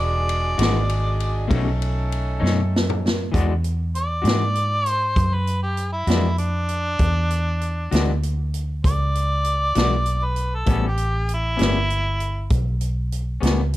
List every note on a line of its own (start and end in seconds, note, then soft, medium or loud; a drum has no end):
0.00 0.56 E1 medium
0.00 1.48 G#3 medium
0.00 1.48 D4 medium
0.00 1.47 F#4 medium
0.00 1.48 G#4 medium
0.00 1.47 D5 loud
0.29 ride medium
0.58 1.48 G#1 medium
0.58 0.78 E3 medium
0.58 0.77 G#3 medium
0.58 0.77 D4 medium
0.58 0.77 F#4 medium
0.58 snare loud
0.58 ride medium
0.90 ride medium
1.20 ride medium
1.48 2.40 B1 medium
1.48 1.68 B2 medium
1.48 1.68 A3 medium
1.48 3.32 A3 medium
1.48 1.69 C#4 loud
1.48 3.32 C#4 medium
1.48 1.69 D#4 medium
1.48 3.32 D#4 medium
1.48 3.32 A4 medium
1.48 kick loud
1.48 ride medium
1.82 ride medium
2.12 ride medium
2.40 3.31 F#2 medium
2.40 2.61 B2 medium
2.40 2.60 A3 medium
2.40 2.60 C#4 medium
2.40 2.60 D#4 medium
2.46 snare medium
2.76 snare medium
2.90 mid tom medium
3.08 snare loud
3.32 4.23 E2 medium
3.32 3.51 E3 medium
3.32 3.52 G#3 medium
3.32 3.52 D4 medium
3.32 3.52 F#4 medium
3.32 kick medium
3.32 closed hi-hat medium
3.64 closed hi-hat medium
3.95 4.89 D5 loud
3.95 closed hi-hat medium
4.22 5.14 G#2 medium
4.22 4.43 E3 soft
4.22 4.43 G#3 medium
4.22 4.43 D4 medium
4.22 4.42 F#4 medium
4.22 closed hi-hat medium
4.28 snare medium
4.55 closed hi-hat medium
4.86 5.36 C5 loud
4.86 closed hi-hat medium
5.16 6.06 F#2 medium
5.16 kick loud
5.16 closed hi-hat medium
5.34 5.62 B4 medium
5.47 closed hi-hat medium
5.63 5.92 G4 medium
5.77 closed hi-hat medium
5.93 6.38 E4 medium
6.07 6.97 F2 medium
6.07 6.28 E3 soft
6.07 6.28 G#3 soft
6.07 6.27 D4 medium
6.07 6.27 F#4 medium
6.07 snare medium
6.07 closed hi-hat medium
6.38 8.19 D4 medium
6.38 closed hi-hat medium
6.69 closed hi-hat medium
6.99 7.89 E2 medium
6.99 kick loud
6.99 closed hi-hat medium
7.31 closed hi-hat medium
7.61 closed hi-hat soft
7.91 8.81 D2 medium
7.91 8.11 E3 medium
7.91 8.11 G#3 medium
7.91 8.10 D4 medium
7.91 8.10 F#4 medium
7.91 snare medium
7.91 closed hi-hat medium
8.23 closed hi-hat medium
8.54 closed hi-hat medium
8.84 9.73 C#2 medium
8.84 10.26 D5 loud
8.84 kick loud
8.84 closed hi-hat medium
9.15 closed hi-hat medium
9.45 closed hi-hat medium
9.75 10.65 B1 medium
9.75 9.95 E3 medium
9.75 9.95 G#3 medium
9.75 9.94 D4 medium
9.75 9.94 F#4 medium
9.75 snare medium
9.75 closed hi-hat medium
10.06 closed hi-hat medium
10.25 10.57 B4 medium
10.36 closed hi-hat medium
10.55 10.84 A4 medium
10.66 11.56 A1 medium
10.66 10.85 A2 medium
10.66 10.86 G3 medium
10.66 10.86 B3 medium
10.66 10.86 C#4 medium
10.66 kick loud
10.66 closed hi-hat medium
10.88 11.30 G4 medium
10.97 closed hi-hat medium
11.29 closed hi-hat medium
11.34 12.50 E4 loud
11.57 12.49 G1 medium
11.57 11.78 A2 soft
11.57 11.77 G3 medium
11.57 11.77 B3 medium
11.57 11.76 C#4 medium
11.57 closed hi-hat medium
11.62 snare loud
11.90 closed hi-hat medium
12.20 closed hi-hat soft
12.50 13.40 B1 medium
12.50 kick loud
12.50 closed hi-hat medium
12.81 closed hi-hat medium
13.12 closed hi-hat medium
13.41 13.77 C#2 medium
13.41 13.61 A2 medium
13.41 13.60 G3 medium
13.41 13.60 B3 medium
13.41 13.60 C#4 medium
13.41 closed hi-hat medium
13.46 snare medium
13.73 closed hi-hat medium